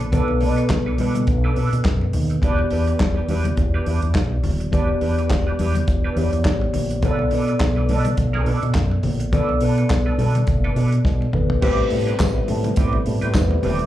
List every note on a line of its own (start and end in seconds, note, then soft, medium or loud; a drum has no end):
0.00 0.13 D5 medium
0.00 closed hi-hat soft
0.12 0.44 B1 loud
0.12 2.38 B2 medium
0.12 2.38 B3 medium
0.12 0.29 D4 medium
0.12 0.29 A4 medium
0.12 2.39 A4 medium
0.12 0.29 B4 medium
0.12 2.39 B4 medium
0.12 kick loud
0.12 closed hi-hat medium
0.12 muted conga soft
0.12 low conga medium
0.28 muted conga soft
0.41 0.63 B2 medium
0.41 0.54 D4 medium
0.41 0.54 A4 medium
0.41 0.55 B4 medium
0.41 open hi-hat medium
0.56 0.68 D4 soft
0.56 0.67 A4 soft
0.56 0.67 B4 medium
0.56 closed hi-hat soft
0.69 0.92 B1 medium
0.69 kick loud
0.69 snare loud
0.69 clap medium
0.69 closed hi-hat medium
0.69 high conga medium
0.86 0.97 D4 soft
0.86 0.97 A4 medium
0.86 0.96 B4 medium
0.98 1.30 B2 medium
0.98 1.15 D4 medium
0.98 1.15 A4 medium
0.98 1.14 B4 medium
0.98 open hi-hat medium
0.98 high conga medium
1.15 muted clean electric guitar stroke soft
1.15 closed hi-hat medium
1.15 high conga medium
1.15 low conga medium
1.27 1.49 B1 medium
1.27 muted clean electric guitar stroke soft
1.27 kick loud
1.27 closed hi-hat medium
1.27 muted conga soft
1.44 1.56 D4 medium
1.44 1.57 A4 medium
1.44 1.57 B4 medium
1.56 1.69 B2 medium
1.56 1.70 D4 medium
1.56 1.70 A4 medium
1.56 1.70 B4 medium
1.56 open hi-hat medium
1.73 1.82 B2 medium
1.73 closed hi-hat soft
1.85 2.07 F#2 loud
1.85 muted clean electric guitar stroke soft
1.85 kick loud
1.85 snare loud
1.85 clap medium
1.85 closed hi-hat soft
2.01 muted clean electric guitar stroke soft
2.01 muted conga soft
2.13 2.36 D#2 medium
2.13 open hi-hat medium
2.13 low conga medium
2.30 muted clean electric guitar stroke soft
2.30 closed hi-hat soft
2.41 2.64 E1 loud
2.41 4.68 E3 medium
2.41 4.68 B3 medium
2.41 2.59 D4 medium
2.41 4.69 G4 medium
2.41 2.59 G4 loud
2.41 2.60 B4 loud
2.41 4.69 D5 medium
2.41 kick loud
2.41 closed hi-hat medium
2.41 low conga medium
2.59 muted conga soft
2.70 2.93 E2 medium
2.70 2.84 D4 medium
2.70 2.84 G4 medium
2.70 2.85 B4 medium
2.70 open hi-hat medium
2.87 2.98 D4 soft
2.87 2.98 G4 medium
2.87 2.97 B4 medium
2.87 closed hi-hat soft
2.99 3.22 E1 medium
2.99 kick loud
2.99 snare loud
2.99 clap medium
2.99 closed hi-hat medium
2.99 high conga medium
3.16 3.27 D4 soft
3.16 3.27 G4 medium
3.16 3.26 B4 medium
3.28 3.50 E2 medium
3.28 3.46 D4 medium
3.28 3.46 G4 medium
3.28 3.45 B4 medium
3.28 open hi-hat medium
3.28 high conga medium
3.44 muted clean electric guitar stroke medium
3.44 closed hi-hat medium
3.44 high conga medium
3.44 low conga medium
3.57 3.79 E1 loud
3.57 muted clean electric guitar stroke soft
3.57 kick loud
3.57 closed hi-hat medium
3.57 muted conga soft
3.74 3.86 D4 medium
3.74 3.86 G4 medium
3.74 3.87 B4 medium
3.86 3.98 E2 medium
3.86 3.99 D4 medium
3.86 4.00 G4 medium
3.86 4.00 B4 medium
3.86 open hi-hat medium
4.02 4.12 E2 medium
4.02 muted clean electric guitar stroke soft
4.02 closed hi-hat soft
4.15 4.37 B1 medium
4.15 muted clean electric guitar stroke soft
4.15 kick loud
4.15 snare loud
4.15 clap medium
4.15 closed hi-hat medium
4.32 muted clean electric guitar stroke soft
4.43 4.65 D#1 medium
4.43 open hi-hat medium
4.43 low conga medium
4.60 muted clean electric guitar stroke soft
4.60 closed hi-hat soft
4.71 4.95 E1 medium
4.71 6.13 E3 medium
4.71 6.13 B3 medium
4.71 4.89 D4 medium
4.71 6.14 G4 medium
4.71 4.89 G4 medium
4.71 4.90 B4 medium
4.71 6.14 D5 medium
4.71 kick loud
4.71 closed hi-hat medium
4.71 low conga medium
5.01 5.32 E2 medium
5.01 5.14 D4 medium
5.01 5.15 G4 medium
5.01 5.15 B4 medium
5.01 open hi-hat medium
5.18 5.29 D4 soft
5.18 5.28 G4 soft
5.18 5.28 B4 medium
5.18 closed hi-hat soft
5.30 5.52 E1 medium
5.30 muted clean electric guitar stroke soft
5.30 kick loud
5.30 snare loud
5.30 clap medium
5.30 closed hi-hat medium
5.30 muted conga soft
5.30 high conga medium
5.47 5.57 D4 soft
5.47 5.57 G4 medium
5.47 5.57 B4 medium
5.47 muted conga soft
5.59 5.81 E2 medium
5.59 5.76 D4 medium
5.59 5.75 G4 medium
5.59 5.75 B4 medium
5.59 open hi-hat medium
5.59 high conga medium
5.75 muted clean electric guitar stroke soft
5.75 closed hi-hat medium
5.75 high conga medium
5.75 low conga medium
5.88 6.10 E1 loud
5.88 muted clean electric guitar stroke soft
5.88 kick loud
5.88 closed hi-hat medium
5.88 muted conga soft
6.04 6.16 D4 medium
6.04 6.17 G4 medium
6.04 6.17 B4 medium
6.15 6.29 E2 medium
6.15 7.02 E3 medium
6.15 7.01 B3 medium
6.15 6.30 D4 medium
6.15 7.03 G4 medium
6.15 6.30 G4 medium
6.15 6.31 B4 medium
6.15 6.24 C#5 soft
6.15 open hi-hat medium
6.24 7.06 D5 medium
6.33 6.42 E2 medium
6.33 muted clean electric guitar stroke soft
6.33 closed hi-hat soft
6.45 6.67 A1 medium
6.45 muted clean electric guitar stroke soft
6.45 kick medium
6.45 snare loud
6.45 clap medium
6.45 closed hi-hat soft
6.61 muted clean electric guitar stroke soft
6.61 muted conga soft
6.73 6.96 A#1 loud
6.73 open hi-hat medium
6.73 low conga medium
6.90 muted clean electric guitar stroke soft
6.90 closed hi-hat soft
7.01 7.24 B1 loud
7.01 9.28 B2 medium
7.01 9.29 B3 medium
7.01 7.19 D4 medium
7.01 9.29 A4 medium
7.01 7.20 A4 medium
7.01 7.20 B4 medium
7.01 7.11 C#5 medium
7.01 kick loud
7.01 closed hi-hat medium
7.01 low conga medium
7.11 9.33 D5 medium
7.19 muted conga soft
7.31 7.54 B2 medium
7.31 7.45 D4 medium
7.31 7.45 A4 medium
7.31 7.46 B4 medium
7.31 open hi-hat medium
7.48 7.59 D4 soft
7.48 7.58 A4 soft
7.48 7.58 B4 medium
7.48 closed hi-hat soft
7.60 7.90 B1 medium
7.60 muted clean electric guitar stroke soft
7.60 kick loud
7.60 snare loud
7.60 clap loud
7.60 closed hi-hat medium
7.60 high conga medium
7.76 7.87 D4 soft
7.76 7.87 A4 medium
7.76 7.86 B4 medium
7.76 muted conga soft
7.89 8.10 B2 medium
7.89 8.06 D4 medium
7.89 8.05 A4 medium
7.89 8.04 B4 medium
7.89 open hi-hat medium
7.89 high conga medium
8.05 muted clean electric guitar stroke soft
8.05 closed hi-hat medium
8.05 high conga medium
8.05 low conga medium
8.17 8.39 B1 medium
8.17 muted clean electric guitar stroke soft
8.17 kick medium
8.17 closed hi-hat medium
8.17 muted conga soft
8.33 8.45 D4 medium
8.33 8.46 A4 medium
8.33 8.46 B4 medium
8.33 muted conga soft
8.46 8.59 B2 medium
8.46 8.60 D4 medium
8.46 8.60 A4 medium
8.46 8.60 B4 medium
8.46 open hi-hat medium
8.62 8.72 B2 medium
8.62 muted clean electric guitar stroke soft
8.62 closed hi-hat soft
8.75 8.97 F#2 loud
8.75 muted clean electric guitar stroke soft
8.75 kick loud
8.75 snare medium
8.75 clap medium
8.75 closed hi-hat soft
8.91 muted clean electric guitar stroke soft
8.91 muted conga soft
9.03 9.26 A#1 medium
9.03 open hi-hat medium
9.03 low conga medium
9.20 muted clean electric guitar stroke soft
9.20 closed hi-hat soft
9.31 9.55 B1 medium
9.31 11.29 B2 medium
9.31 11.30 B3 medium
9.31 9.49 D4 medium
9.31 11.30 A4 medium
9.31 9.50 A4 medium
9.31 9.50 B4 medium
9.31 11.31 D5 medium
9.31 kick loud
9.31 closed hi-hat medium
9.31 low conga medium
9.49 muted conga soft
9.61 9.83 B2 medium
9.61 9.75 D4 medium
9.61 9.75 A4 medium
9.61 9.75 B4 medium
9.61 open hi-hat medium
9.78 9.88 D4 soft
9.78 9.88 A4 medium
9.78 9.88 B4 medium
9.78 closed hi-hat soft
9.90 10.12 B1 medium
9.90 kick loud
9.90 snare loud
9.90 clap loud
9.90 closed hi-hat medium
9.90 high conga medium
10.06 10.17 D4 soft
10.06 10.17 A4 medium
10.06 10.16 B4 medium
10.18 10.40 B2 loud
10.18 10.36 D4 medium
10.18 10.35 A4 medium
10.18 10.34 B4 medium
10.18 open hi-hat medium
10.18 high conga medium
10.35 muted clean electric guitar stroke medium
10.35 closed hi-hat medium
10.35 high conga medium
10.35 low conga medium
10.47 10.70 F#1 medium
10.47 muted clean electric guitar stroke soft
10.47 kick medium
10.47 closed hi-hat medium
10.47 muted conga soft
10.64 10.75 D4 medium
10.64 10.76 A4 medium
10.64 10.76 B4 medium
10.64 muted conga soft
10.76 10.98 B2 medium
10.76 10.90 D4 medium
10.76 10.90 A4 medium
10.76 10.90 B4 medium
10.76 open hi-hat medium
10.92 closed hi-hat soft
11.05 11.27 B2 loud
11.05 muted clean electric guitar stroke soft
11.05 kick loud
11.05 snare medium
11.05 high conga medium
11.21 muted clean electric guitar stroke soft
11.21 muted conga soft
11.33 11.56 G#1 medium
11.33 11.63 B2 medium
11.33 11.63 B3 soft
11.33 11.63 A4 soft
11.33 11.62 B4 medium
11.33 mid tom medium
11.33 low conga medium
11.50 muted clean electric guitar stroke soft
11.50 floor tom medium
11.61 11.84 A1 loud
11.61 13.86 B2 medium
11.61 13.86 C3 medium
11.61 13.86 G3 medium
11.61 13.31 A3 medium
11.61 13.86 A3 medium
11.61 11.79 C4 medium
11.61 13.86 E4 medium
11.61 13.31 G4 medium
11.61 11.78 G4 loud
11.61 11.78 B4 loud
11.61 13.32 B4 medium
11.61 13.32 C5 medium
11.61 kick loud
11.61 crash loud
11.61 muted conga soft
11.79 muted clean electric guitar stroke soft
11.90 12.13 A2 loud
11.90 muted clean electric guitar stroke soft
11.90 open hi-hat medium
12.07 12.18 C4 soft
12.07 12.18 G4 medium
12.07 12.17 B4 medium
12.07 closed hi-hat soft
12.20 12.42 A1 loud
12.20 kick loud
12.20 snare loud
12.20 clap loud
12.20 closed hi-hat medium
12.20 tambourine medium
12.20 muted conga soft
12.20 high conga medium
12.37 muted clean electric guitar stroke soft
12.48 12.71 A2 loud
12.48 open hi-hat medium
12.48 high conga medium
12.64 muted clean electric guitar stroke soft
12.64 closed hi-hat medium
12.64 high conga medium
12.64 low conga medium
12.76 12.99 A1 loud
12.76 12.94 C4 medium
12.76 12.94 G4 medium
12.76 12.93 B4 medium
12.76 kick loud
12.76 closed hi-hat medium
12.76 muted conga soft
12.93 muted clean electric guitar stroke medium
12.93 muted conga soft
13.06 13.19 A2 loud
13.06 muted clean electric guitar stroke soft
13.06 open hi-hat medium
13.21 13.32 A2 medium
13.21 13.33 C4 soft
13.21 13.32 G4 medium
13.21 13.32 B4 medium
13.21 closed hi-hat soft
13.34 13.57 E2 loud
13.34 13.86 A3 medium
13.34 13.86 G4 soft
13.34 13.86 B4 soft
13.34 13.86 C5 medium
13.34 muted clean electric guitar stroke soft
13.34 kick loud
13.34 snare loud
13.34 clap medium
13.34 closed hi-hat medium
13.34 tambourine loud
13.34 muted conga soft
13.51 muted clean electric guitar stroke soft
13.51 muted conga soft
13.63 13.86 D#1 medium
13.63 13.80 C4 medium
13.63 13.79 G4 medium
13.63 13.77 B4 loud
13.63 open hi-hat medium
13.63 low conga medium
13.79 muted clean electric guitar stroke soft
13.79 closed hi-hat soft